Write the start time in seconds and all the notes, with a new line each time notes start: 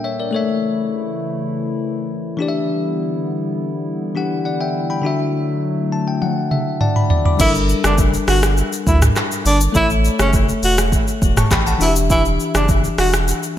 Already playing: A#2 G3 A#3 D4 A#4 E5 G5
0.04 C#5 E5
0.20 A#4 D5
0.31 C#3 E3 A3 E4 A4 C#5
0.36 E5
2.37 D3 E3 G3 B3 D4 E4 G4
2.42 D5
2.49 E5
4.15 E3 D4 G4 F#5
4.45 D5 F#5
4.61 E5 G5
4.90 G5 B5
5.02 D3 F#3 A3 D4 F#4
5.07 E5
5.92 A5
6.08 G5
6.22 F#5, high tom
6.51 E5, mid tom
6.81 D5 F#5 A5, mid tom
6.96 B5, mid tom
7.10 D5, floor tom
7.25 B5 D6, floor tom
7.37 G1 G3 D4 E4 A4, kick, crash, shaker
7.42 A#4
7.55 shaker
7.69 shaker
7.84 F#1 D4, cross-stick, shaker
7.98 kick, shaker
8.14 shaker
8.28 G1 F#4, cross-stick, open hi-hat, shaker
8.43 cross-stick, shaker
8.57 shaker
8.73 shaker
8.87 D2 E4, kick, shaker
9.02 cross-stick, mid tom, shaker
9.16 cross-stick, clap, shaker
9.32 shaker
9.46 G1 D4, open hi-hat, shaker
9.61 shaker
9.72 A1 A3 E4 A4 C#5, kick, shaker
9.77 E5
9.90 shaker
10.05 shaker
10.19 F#1 C#4, cross-stick, shaker
10.33 kick, shaker
10.49 shaker
10.63 E1 F#4, open hi-hat, shaker
10.78 cross-stick, shaker
10.92 kick, shaker
11.08 shaker
11.22 E1, kick, shaker
11.37 A5 C#6, cross-stick, mid tom, shaker
11.51 A1 G5 B5, kick, cross-stick, clap, shaker
11.67 F#5 A5, shaker
11.78 E1 E3 D4 E4 F#4, open hi-hat, shaker
11.83 E5
11.88 G4
11.96 shaker
12.10 E4, kick, shaker
12.25 shaker
12.40 shaker
12.55 F#1 D4, cross-stick, shaker
12.69 kick, shaker
12.84 shaker
12.98 E1 F#4, cross-stick, open hi-hat, shaker
13.13 cross-stick, shaker
13.28 shaker
13.43 shaker